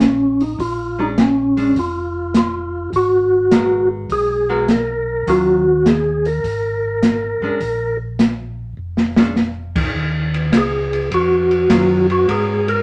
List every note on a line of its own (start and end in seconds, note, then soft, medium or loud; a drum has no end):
0.00 0.54 A#1 medium
0.00 0.43 C#4 medium
0.00 snare medium
0.00 closed hi-hat soft
0.41 0.60 D#4 medium
0.41 open hi-hat soft
0.59 1.72 A#1 medium
0.59 1.00 F4 medium
0.59 kick soft
0.59 open hi-hat soft
0.99 1.15 G#3 medium
0.99 1.16 C#4 medium
0.99 1.16 D4 medium
0.99 1.08 D#4 medium
1.18 1.79 C#4 medium
1.18 snare medium
1.18 closed hi-hat medium
1.57 1.74 G#3 medium
1.57 1.75 C#4 soft
1.57 1.74 D4 medium
1.57 open hi-hat soft
1.75 2.89 F1 medium
1.75 2.36 F4 medium
1.75 kick soft
1.75 open hi-hat soft
2.34 2.90 F4 medium
2.34 snare medium
2.34 closed hi-hat soft
2.92 4.06 G#1 medium
2.92 3.89 F#4 medium
2.92 kick soft
2.92 open hi-hat soft
3.51 4.42 G#3 medium
3.51 4.42 B3 medium
3.51 4.42 F#4 medium
3.51 4.42 A#4 medium
3.51 snare medium
3.51 closed hi-hat medium
4.09 5.22 B1 medium
4.09 4.71 G#4 medium
4.09 kick soft
4.09 open hi-hat soft
4.49 4.66 G#3 medium
4.49 4.67 B3 medium
4.49 4.67 F#4 medium
4.49 4.67 A#4 medium
4.68 5.30 A#4 medium
4.68 snare medium
4.68 closed hi-hat soft
5.26 6.40 D#2 medium
5.26 5.63 D#3 medium
5.26 5.63 F#3 medium
5.26 5.63 C#4 medium
5.26 5.63 F4 medium
5.26 5.88 F#4 medium
5.26 kick soft
5.26 open hi-hat soft
5.86 6.27 G#4 medium
5.86 snare medium
5.86 closed hi-hat medium
6.25 7.97 A#4 medium
6.25 open hi-hat soft
6.43 7.38 G#1 medium
6.43 kick soft
6.43 open hi-hat soft
7.03 snare medium
7.03 closed hi-hat medium
7.41 7.50 G#1 soft
7.41 7.59 G#3 medium
7.41 7.60 C#4 medium
7.41 7.60 D4 medium
7.60 8.73 A#1 medium
7.60 kick soft
7.60 open hi-hat soft
8.19 snare medium
8.19 closed hi-hat medium
8.77 9.90 F1 medium
8.97 snare soft
9.16 9.34 G#3 medium
9.16 9.35 C#4 medium
9.16 9.35 D4 medium
9.16 snare medium
9.36 snare medium
9.76 kick medium
9.76 crash medium
9.94 10.51 D#2 medium
9.94 kick soft
10.34 ride soft
10.52 11.09 C#2 medium
10.52 kick soft
10.52 snare medium
10.52 hi-hat pedal medium
10.52 ride medium
10.57 11.10 G#4 medium
10.93 ride soft
11.11 11.68 F2 medium
11.11 12.07 F#4 medium
11.11 kick soft
11.11 ride medium
11.51 ride soft
11.69 12.26 F#2 medium
11.69 12.05 D#3 medium
11.69 12.06 F#3 medium
11.69 12.06 C#4 medium
11.69 12.06 F4 medium
11.69 kick soft
11.69 snare medium
11.69 hi-hat pedal medium
11.69 ride medium
12.10 12.29 F#4 medium
12.10 ride soft
12.28 12.82 G#2 medium
12.28 12.82 G#3 soft
12.28 12.82 B3 medium
12.28 12.82 F#4 medium
12.28 12.68 G#4 medium
12.28 12.82 A#4 medium
12.28 kick soft
12.28 ride medium
12.68 12.82 A#4 loud
12.68 ride soft